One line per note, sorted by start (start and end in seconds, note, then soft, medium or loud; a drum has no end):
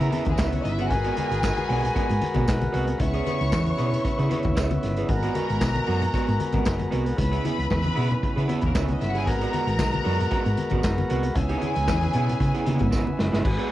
0.00 0.89 C#3 medium
0.00 0.09 C#3 loud
0.00 0.89 B3 medium
0.00 0.09 B3 medium
0.00 0.89 E4 medium
0.00 0.10 G#4 medium
0.00 0.23 A#4 medium
0.00 0.23 A#5 loud
0.00 closed hi-hat medium
0.00 muted conga soft
0.10 0.27 B3 medium
0.10 0.25 E4 medium
0.10 0.25 G#4 medium
0.10 closed hi-hat medium
0.10 high conga medium
0.25 0.35 D#2 loud
0.25 muted clean electric guitar stroke medium
0.25 kick medium
0.25 closed hi-hat soft
0.25 high conga medium
0.30 0.38 G#3 medium
0.30 0.39 G#4 medium
0.38 0.57 C#2 medium
0.38 0.47 A#3 medium
0.38 0.54 B3 medium
0.38 0.52 E4 medium
0.38 0.47 A#4 medium
0.38 0.52 A#4 medium
0.38 kick loud
0.38 snare loud
0.38 clap medium
0.38 tambourine medium
0.38 muted conga soft
0.46 0.55 B3 medium
0.46 0.55 B4 medium
0.52 0.64 C#4 medium
0.52 0.64 C#5 medium
0.52 muted clean electric guitar stroke soft
0.52 closed hi-hat medium
0.52 high conga medium
0.63 0.91 G1 loud
0.63 0.72 D#4 medium
0.63 0.73 D#5 loud
0.63 muted clean electric guitar stroke medium
0.63 closed hi-hat medium
0.72 0.81 E4 medium
0.72 0.81 E5 medium
0.79 0.89 B3 soft
0.79 0.90 E4 medium
0.79 0.90 F#4 medium
0.79 0.90 G#4 medium
0.79 0.90 F#5 loud
0.79 closed hi-hat medium
0.89 1.09 G#1 loud
0.89 2.97 G#3 medium
0.89 2.98 F#4 medium
0.89 2.70 G#4 loud
0.89 2.97 A#4 medium
0.89 2.97 B4 medium
0.89 2.69 G#5 loud
0.89 muted clean electric guitar stroke soft
0.89 kick loud
0.89 closed hi-hat medium
0.89 muted conga soft
0.89 low conga medium
1.04 1.16 B3 medium
1.04 1.16 F#4 medium
1.04 1.17 A#4 medium
1.04 closed hi-hat medium
1.17 1.30 B3 medium
1.17 1.30 F#4 soft
1.17 1.30 A#4 medium
1.17 closed hi-hat medium
1.17 high conga medium
1.31 1.49 G#1 medium
1.31 muted clean electric guitar stroke soft
1.31 closed hi-hat soft
1.43 kick loud
1.43 snare medium
1.43 clap medium
1.43 tambourine loud
1.43 high conga medium
1.57 muted clean electric guitar stroke soft
1.57 closed hi-hat soft
1.57 high conga medium
1.69 1.88 B1 medium
1.69 1.85 B3 medium
1.69 1.83 F#4 medium
1.69 1.82 A#4 medium
1.69 open hi-hat medium
1.83 muted clean electric guitar stroke soft
1.83 closed hi-hat medium
1.83 low conga medium
1.95 2.11 B3 medium
1.95 2.08 F#4 medium
1.95 2.07 A#4 medium
1.95 muted fingered electric bass stroke soft
1.95 kick loud
1.95 closed hi-hat medium
1.95 muted conga soft
2.08 2.19 G#2 medium
2.08 muted clean electric guitar stroke soft
2.08 closed hi-hat soft
2.08 muted conga soft
2.21 muted clean electric guitar stroke soft
2.21 closed hi-hat medium
2.21 high conga medium
2.34 2.44 B2 medium
2.34 2.45 B3 soft
2.34 2.46 F#4 medium
2.34 2.46 A#4 medium
2.34 kick medium
2.34 closed hi-hat medium
2.34 high conga medium
2.47 2.67 B1 medium
2.47 muted clean electric guitar stroke soft
2.47 kick loud
2.47 snare loud
2.47 clap medium
2.47 tambourine loud
2.60 muted clean electric guitar stroke soft
2.60 closed hi-hat soft
2.60 muted conga soft
2.60 high conga medium
2.72 2.93 C2 medium
2.72 2.89 B3 medium
2.72 2.87 F#4 medium
2.72 2.87 B4 loud
2.72 closed hi-hat medium
2.87 muted clean electric guitar stroke soft
2.87 closed hi-hat soft
2.99 3.19 C#2 loud
2.99 5.07 C#3 medium
2.99 5.07 B3 medium
2.99 5.07 E4 medium
2.99 4.80 C#5 medium
2.99 4.79 C#6 loud
2.99 muted clean electric guitar stroke soft
2.99 kick loud
2.99 closed hi-hat loud
2.99 muted conga soft
2.99 low conga medium
3.13 3.25 E4 medium
3.13 3.25 G#4 medium
3.13 3.26 B4 medium
3.13 closed hi-hat soft
3.13 muted conga soft
3.26 3.39 E4 medium
3.26 3.38 G#4 medium
3.26 3.38 B4 medium
3.26 closed hi-hat medium
3.26 high conga medium
3.39 3.49 C#2 medium
3.39 muted clean electric guitar stroke soft
3.39 closed hi-hat soft
3.52 3.71 E2 medium
3.52 kick loud
3.52 snare medium
3.52 clap medium
3.52 tambourine loud
3.52 high conga medium
3.66 muted clean electric guitar stroke medium
3.66 closed hi-hat soft
3.66 high conga medium
3.78 3.97 B2 medium
3.78 3.94 E4 medium
3.78 3.91 G#4 medium
3.78 3.91 B4 medium
3.78 closed hi-hat medium
3.92 muted clean electric guitar stroke soft
3.92 closed hi-hat medium
3.92 low conga medium
4.04 muted clean electric guitar stroke soft
4.04 muted fingered electric bass stroke soft
4.04 kick loud
4.04 closed hi-hat medium
4.18 4.28 C#3 loud
4.18 4.28 E4 medium
4.18 4.28 G#4 medium
4.18 4.29 B4 medium
4.18 closed hi-hat soft
4.18 muted conga soft
4.29 4.46 E4 medium
4.29 4.43 G#4 medium
4.29 4.43 B4 medium
4.29 closed hi-hat medium
4.29 high conga medium
4.43 4.53 D#2 medium
4.43 muted clean electric guitar stroke soft
4.43 kick medium
4.43 closed hi-hat soft
4.43 high conga medium
4.55 4.75 C#2 medium
4.55 4.72 E4 medium
4.55 4.70 G#4 medium
4.55 4.70 C#5 medium
4.55 kick loud
4.55 snare loud
4.55 clap medium
4.55 tambourine loud
4.70 muted clean electric guitar stroke soft
4.70 closed hi-hat soft
4.70 muted conga soft
4.70 high conga medium
4.83 5.02 G1 medium
4.83 muted clean electric guitar stroke soft
4.83 snare soft
4.83 closed hi-hat medium
4.97 5.09 E4 soft
4.97 5.09 G#4 medium
4.97 5.08 B4 medium
4.97 closed hi-hat medium
5.09 5.28 G#1 loud
5.09 7.16 G#3 medium
5.09 7.16 B3 medium
5.09 7.16 F#4 medium
5.09 7.16 A#4 medium
5.09 6.88 A#4 medium
5.09 6.88 A#5 loud
5.09 muted clean electric guitar stroke soft
5.09 kick loud
5.09 closed hi-hat medium
5.09 low conga medium
5.23 5.34 B3 medium
5.23 5.34 F#4 medium
5.23 5.35 A#4 medium
5.23 closed hi-hat medium
5.35 5.48 B3 medium
5.35 5.48 F#4 medium
5.35 5.47 A#4 medium
5.35 closed hi-hat medium
5.35 high conga medium
5.48 5.58 G#1 medium
5.48 muted clean electric guitar stroke soft
5.48 closed hi-hat soft
5.61 5.80 B1 loud
5.61 kick loud
5.61 snare loud
5.61 clap medium
5.61 tambourine loud
5.61 muted conga soft
5.61 high conga medium
5.74 muted clean electric guitar stroke soft
5.74 closed hi-hat soft
5.74 muted conga soft
5.74 high conga medium
5.87 6.07 F#2 medium
5.87 6.03 B3 medium
5.87 6.01 F#4 medium
5.87 6.01 A#4 medium
5.87 open hi-hat medium
6.01 muted clean electric guitar stroke medium
6.01 closed hi-hat medium
6.01 low conga medium
6.14 6.30 B3 medium
6.14 6.27 F#4 medium
6.14 6.27 A#4 medium
6.14 muted fingered electric bass stroke medium
6.14 kick loud
6.14 closed hi-hat medium
6.14 muted conga soft
6.27 6.37 G#2 medium
6.27 muted clean electric guitar stroke soft
6.27 closed hi-hat soft
6.27 muted conga soft
6.40 muted clean electric guitar stroke soft
6.40 closed hi-hat medium
6.40 high conga medium
6.53 6.63 G#1 medium
6.53 6.65 B3 soft
6.53 6.65 F#4 medium
6.53 6.65 A#4 medium
6.53 kick medium
6.53 closed hi-hat soft
6.53 high conga medium
6.65 6.85 F#1 medium
6.65 muted clean electric guitar stroke soft
6.65 kick loud
6.65 snare loud
6.65 clap medium
6.65 tambourine medium
6.65 muted conga soft
6.79 muted clean electric guitar stroke soft
6.79 closed hi-hat soft
6.79 muted conga soft
6.79 high conga medium
6.91 7.11 C2 medium
6.91 7.07 B3 medium
6.91 7.05 F#4 medium
6.91 7.05 B4 loud
6.91 closed hi-hat medium
7.05 muted clean electric guitar stroke soft
7.05 closed hi-hat soft
7.17 7.37 C#2 loud
7.17 9.24 C#3 medium
7.17 9.24 B3 medium
7.17 9.25 E4 medium
7.17 8.59 B4 loud
7.17 8.59 B5 loud
7.17 muted clean electric guitar stroke soft
7.17 kick loud
7.17 closed hi-hat loud
7.17 low conga medium
7.31 7.43 B3 medium
7.31 7.43 E4 medium
7.31 7.44 G#4 medium
7.31 closed hi-hat medium
7.31 muted conga soft
7.44 7.57 B3 medium
7.44 7.57 E4 medium
7.44 7.57 G#4 medium
7.44 closed hi-hat medium
7.44 high conga medium
7.58 7.67 C#2 medium
7.58 muted clean electric guitar stroke soft
7.58 closed hi-hat soft
7.70 7.89 E2 medium
7.70 kick loud
7.70 snare loud
7.70 clap medium
7.70 tambourine medium
7.70 high conga medium
7.84 muted clean electric guitar stroke soft
7.84 closed hi-hat soft
7.84 muted conga soft
7.84 high conga medium
7.95 8.16 B2 medium
7.95 8.12 B3 medium
7.95 8.09 E4 medium
7.95 8.08 G#4 medium
7.95 open hi-hat medium
8.09 muted clean electric guitar stroke soft
8.09 closed hi-hat medium
8.09 low conga medium
8.22 muted clean electric guitar stroke soft
8.22 muted fingered electric bass stroke soft
8.22 kick loud
8.22 closed hi-hat medium
8.22 muted conga soft
8.36 8.46 C#3 medium
8.36 8.47 B3 medium
8.36 8.47 E4 medium
8.36 8.47 G#4 medium
8.36 closed hi-hat soft
8.48 8.64 B3 medium
8.48 8.62 E4 medium
8.48 8.61 G#4 medium
8.48 closed hi-hat medium
8.48 high conga medium
8.61 8.72 D#2 medium
8.61 muted clean electric guitar stroke soft
8.61 kick medium
8.61 closed hi-hat soft
8.61 high conga medium
8.67 8.75 A#3 medium
8.67 8.75 A#4 medium
8.75 8.94 C#2 medium
8.75 8.91 B3 medium
8.75 8.84 B3 medium
8.75 8.88 E4 medium
8.75 8.88 A#4 medium
8.75 8.84 B4 medium
8.75 kick loud
8.75 snare loud
8.75 clap medium
8.75 tambourine loud
8.75 muted conga soft
8.83 8.92 C#4 medium
8.83 8.92 C#5 medium
8.88 muted clean electric guitar stroke soft
8.88 closed hi-hat soft
8.88 high conga medium
8.92 9.01 D#4 medium
8.92 9.01 D#5 medium
9.00 9.27 G1 medium
9.00 9.09 E4 medium
9.00 9.09 E5 medium
9.00 muted clean electric guitar stroke medium
9.00 snare soft
9.00 closed hi-hat medium
9.09 9.18 F#4 medium
9.09 9.19 F#5 loud
9.14 9.26 B3 medium
9.14 9.26 E4 medium
9.14 9.26 G#4 medium
9.14 9.27 G#4 medium
9.14 9.27 G#5 loud
9.14 closed hi-hat soft
9.26 9.46 G#1 loud
9.26 11.34 G#3 medium
9.26 11.32 B3 medium
9.26 11.34 F#4 medium
9.26 11.34 A#4 medium
9.26 11.07 A#4 loud
9.26 11.07 A#5 loud
9.26 muted clean electric guitar stroke soft
9.26 kick loud
9.26 closed hi-hat medium
9.26 muted conga soft
9.26 low conga medium
9.41 9.51 B3 medium
9.41 9.51 F#4 medium
9.41 9.52 A#4 medium
9.41 closed hi-hat medium
9.41 muted conga soft
9.52 9.65 B3 medium
9.52 9.66 F#4 medium
9.52 9.65 A#4 medium
9.52 closed hi-hat medium
9.52 high conga medium
9.66 9.79 G#1 medium
9.66 muted clean electric guitar stroke soft
9.66 closed hi-hat soft
9.79 9.98 B1 medium
9.79 kick loud
9.79 snare loud
9.79 clap medium
9.79 tambourine loud
9.79 high conga medium
9.92 muted clean electric guitar stroke soft
9.92 closed hi-hat soft
9.92 muted conga soft
9.92 high conga medium
10.04 10.24 F#2 loud
10.04 10.21 B3 medium
10.04 10.18 F#4 medium
10.04 10.17 A#4 medium
10.04 open hi-hat medium
10.19 muted clean electric guitar stroke medium
10.19 closed hi-hat medium
10.19 low conga medium
10.31 10.47 B3 medium
10.31 10.44 F#4 medium
10.31 10.43 A#4 loud
10.31 muted fingered electric bass stroke medium
10.31 kick loud
10.31 closed hi-hat medium
10.45 10.55 G#2 medium
10.45 muted clean electric guitar stroke soft
10.45 closed hi-hat soft
10.57 muted clean electric guitar stroke soft
10.57 closed hi-hat medium
10.57 high conga medium
10.70 10.80 G#1 medium
10.70 10.82 B3 medium
10.70 10.82 F#4 medium
10.70 10.83 A#4 medium
10.70 kick medium
10.70 closed hi-hat soft
10.70 high conga medium
10.83 11.03 F#1 medium
10.83 muted clean electric guitar stroke soft
10.83 kick loud
10.83 snare loud
10.83 clap medium
10.83 tambourine loud
10.97 muted clean electric guitar stroke soft
10.97 closed hi-hat soft
10.97 muted conga soft
10.97 high conga medium
11.10 11.29 C2 loud
11.10 11.26 B3 medium
11.10 11.23 F#4 medium
11.10 11.23 B4 loud
11.10 closed hi-hat medium
11.23 muted clean electric guitar stroke medium
11.23 closed hi-hat medium
11.34 11.54 C#2 loud
11.34 13.42 C#3 medium
11.34 13.42 B3 medium
11.34 13.42 E4 medium
11.34 13.15 G#4 loud
11.34 13.16 G#5 loud
11.34 muted clean electric guitar stroke soft
11.34 kick loud
11.34 closed hi-hat loud
11.34 muted conga soft
11.34 low conga medium
11.49 11.60 B3 medium
11.49 11.61 E4 medium
11.49 11.62 G#4 medium
11.49 closed hi-hat medium
11.62 11.74 B3 medium
11.62 11.75 E4 medium
11.62 11.75 G#4 medium
11.62 closed hi-hat medium
11.62 high conga medium
11.76 11.88 C#2 loud
11.76 muted clean electric guitar stroke soft
11.76 closed hi-hat soft
11.88 12.06 E2 medium
11.88 kick loud
11.88 snare medium
11.88 clap medium
11.88 tambourine medium
11.88 muted conga soft
11.88 high conga medium
12.01 muted clean electric guitar stroke soft
12.01 closed hi-hat soft
12.01 muted conga soft
12.01 high conga medium
12.13 12.33 B2 medium
12.13 12.30 B3 medium
12.13 12.27 E4 medium
12.13 12.26 G#4 medium
12.13 closed hi-hat medium
12.13 low conga medium
12.27 muted clean electric guitar stroke medium
12.27 closed hi-hat medium
12.27 low conga medium
12.40 12.50 C#3 loud
12.40 muted clean electric guitar stroke soft
12.40 kick loud
12.40 closed hi-hat medium
12.54 12.64 B3 soft
12.54 12.66 E4 medium
12.54 12.65 G#4 medium
12.54 closed hi-hat soft
12.66 12.77 C#3 medium
12.66 12.86 B3 medium
12.66 12.79 E4 medium
12.66 12.79 G#4 medium
12.66 closed hi-hat medium
12.66 high conga medium
12.79 12.90 G#2 medium
12.79 muted clean electric guitar stroke medium
12.79 kick medium
12.79 closed hi-hat medium
12.79 high conga medium
12.91 13.03 G#1 medium
12.91 13.07 B3 medium
12.91 13.05 E4 medium
12.91 13.05 A#4 medium
12.91 kick loud
12.91 snare medium
12.91 tambourine medium
12.91 muted conga soft
13.05 muted clean electric guitar stroke medium
13.05 muted conga soft
13.05 high conga medium
13.18 13.29 F#1 loud
13.18 muted clean electric guitar stroke soft
13.18 snare medium
13.32 13.42 G1 medium
13.32 13.42 B3 soft
13.32 13.43 E4 medium
13.32 13.43 G#4 medium
13.32 snare medium
13.43 13.55 G#1 loud
13.43 13.72 G#3 medium
13.43 13.72 F#4 medium
13.43 13.72 G#4 medium
13.43 13.72 B4 medium
13.43 13.72 G#5 medium
13.43 muted clean electric guitar stroke soft
13.43 kick loud
13.43 crash medium
13.43 low conga medium
13.57 13.68 B3 medium
13.57 13.68 F#4 medium
13.57 13.70 G#4 medium
13.57 closed hi-hat soft